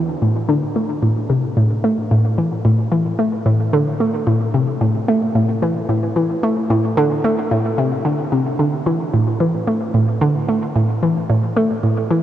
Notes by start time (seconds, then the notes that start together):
Already playing: E3
0.22 A2
0.49 D3
0.76 A3
1.03 A2
1.30 C3
1.57 A2
1.84 A3
2.11 A2
2.38 E3
2.65 A2
2.92 E3
3.19 A3
3.46 A2
3.73 D3
4.00 A3
4.27 A2
4.54 C3
4.81 A2
5.08 A3
5.35 A2
5.62 E3
5.89 A2
6.16 E3
6.43 A3
6.70 A2
6.97 D3
7.24 A3
7.51 A2
7.78 C3
8.05 D3
8.32 C3
8.59 D3
8.86 E3
9.13 A2
9.40 E3
9.67 A3
9.94 A2
10.21 D3
10.49 A3
10.76 A2
11.03 E3
11.30 A2
11.57 A3
11.84 A2
12.11 E3